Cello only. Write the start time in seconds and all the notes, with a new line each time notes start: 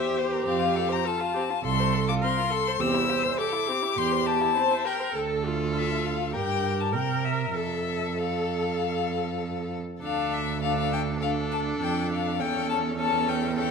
Already playing: E2
0.47 F2
1.64 C2
2.80 E2
3.98 E2
5.16 D2
6.35 G2
6.95 C3
7.57 F2
10.02 D2
11.81 F2
12.40 E2